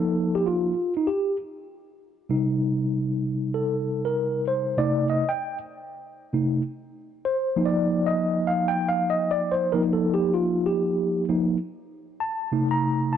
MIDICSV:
0, 0, Header, 1, 2, 480
1, 0, Start_track
1, 0, Tempo, 618557
1, 1793, Time_signature, 4, 2, 24, 8
1, 10221, End_track
2, 0, Start_track
2, 0, Title_t, "Tine electric piano"
2, 0, Program_c, 0, 4
2, 0, Note_on_c, 0, 53, 52
2, 0, Note_on_c, 0, 58, 48
2, 0, Note_on_c, 0, 63, 60
2, 0, Note_on_c, 0, 69, 94
2, 273, Note_on_c, 0, 67, 85
2, 284, Note_off_c, 0, 69, 0
2, 359, Note_off_c, 0, 67, 0
2, 360, Note_on_c, 0, 65, 85
2, 559, Note_off_c, 0, 53, 0
2, 562, Note_off_c, 0, 58, 0
2, 564, Note_off_c, 0, 63, 0
2, 722, Note_off_c, 0, 65, 0
2, 751, Note_on_c, 0, 63, 81
2, 832, Note_on_c, 0, 67, 77
2, 838, Note_off_c, 0, 63, 0
2, 1056, Note_off_c, 0, 67, 0
2, 1780, Note_on_c, 0, 48, 51
2, 1784, Note_on_c, 0, 55, 50
2, 1789, Note_on_c, 0, 63, 64
2, 2749, Note_on_c, 0, 69, 76
2, 3143, Note_on_c, 0, 70, 79
2, 3156, Note_off_c, 0, 69, 0
2, 3449, Note_off_c, 0, 70, 0
2, 3474, Note_on_c, 0, 72, 83
2, 3676, Note_off_c, 0, 48, 0
2, 3678, Note_off_c, 0, 55, 0
2, 3680, Note_off_c, 0, 63, 0
2, 3703, Note_on_c, 0, 48, 54
2, 3708, Note_on_c, 0, 57, 47
2, 3711, Note_on_c, 0, 74, 100
2, 3714, Note_on_c, 0, 63, 59
2, 3721, Note_off_c, 0, 72, 0
2, 3935, Note_off_c, 0, 74, 0
2, 3955, Note_on_c, 0, 75, 97
2, 4052, Note_off_c, 0, 48, 0
2, 4055, Note_off_c, 0, 57, 0
2, 4058, Note_off_c, 0, 63, 0
2, 4103, Note_on_c, 0, 79, 93
2, 4112, Note_off_c, 0, 75, 0
2, 4328, Note_off_c, 0, 79, 0
2, 4914, Note_on_c, 0, 48, 50
2, 4915, Note_on_c, 0, 57, 46
2, 4921, Note_on_c, 0, 63, 56
2, 5130, Note_off_c, 0, 48, 0
2, 5130, Note_off_c, 0, 57, 0
2, 5134, Note_off_c, 0, 63, 0
2, 5627, Note_on_c, 0, 72, 94
2, 5869, Note_on_c, 0, 53, 60
2, 5870, Note_on_c, 0, 58, 54
2, 5877, Note_on_c, 0, 63, 67
2, 5940, Note_on_c, 0, 74, 93
2, 5960, Note_off_c, 0, 72, 0
2, 6258, Note_on_c, 0, 75, 100
2, 6277, Note_off_c, 0, 74, 0
2, 6575, Note_on_c, 0, 77, 98
2, 6595, Note_off_c, 0, 75, 0
2, 6737, Note_on_c, 0, 79, 106
2, 6749, Note_off_c, 0, 77, 0
2, 6893, Note_off_c, 0, 79, 0
2, 6895, Note_on_c, 0, 77, 99
2, 7053, Note_off_c, 0, 77, 0
2, 7061, Note_on_c, 0, 75, 99
2, 7225, Note_on_c, 0, 74, 101
2, 7232, Note_off_c, 0, 75, 0
2, 7383, Note_on_c, 0, 72, 91
2, 7394, Note_off_c, 0, 74, 0
2, 7545, Note_on_c, 0, 70, 90
2, 7546, Note_off_c, 0, 53, 0
2, 7548, Note_off_c, 0, 58, 0
2, 7553, Note_off_c, 0, 72, 0
2, 7554, Note_off_c, 0, 63, 0
2, 7556, Note_on_c, 0, 53, 55
2, 7557, Note_on_c, 0, 58, 52
2, 7563, Note_on_c, 0, 63, 64
2, 7619, Note_off_c, 0, 70, 0
2, 7706, Note_on_c, 0, 69, 84
2, 7858, Note_off_c, 0, 69, 0
2, 7867, Note_on_c, 0, 67, 90
2, 8019, Note_off_c, 0, 67, 0
2, 8021, Note_on_c, 0, 65, 85
2, 8272, Note_on_c, 0, 67, 82
2, 8275, Note_off_c, 0, 65, 0
2, 8722, Note_off_c, 0, 67, 0
2, 8749, Note_off_c, 0, 53, 0
2, 8751, Note_off_c, 0, 58, 0
2, 8755, Note_off_c, 0, 63, 0
2, 8758, Note_on_c, 0, 53, 53
2, 8761, Note_on_c, 0, 58, 47
2, 8765, Note_on_c, 0, 63, 57
2, 8972, Note_off_c, 0, 53, 0
2, 8973, Note_off_c, 0, 58, 0
2, 8976, Note_off_c, 0, 63, 0
2, 9470, Note_on_c, 0, 81, 82
2, 9713, Note_on_c, 0, 48, 51
2, 9719, Note_on_c, 0, 57, 44
2, 9722, Note_on_c, 0, 63, 53
2, 9837, Note_off_c, 0, 81, 0
2, 9863, Note_on_c, 0, 82, 85
2, 10187, Note_on_c, 0, 81, 76
2, 10202, Note_off_c, 0, 82, 0
2, 10221, Note_off_c, 0, 48, 0
2, 10221, Note_off_c, 0, 57, 0
2, 10221, Note_off_c, 0, 63, 0
2, 10221, Note_off_c, 0, 81, 0
2, 10221, End_track
0, 0, End_of_file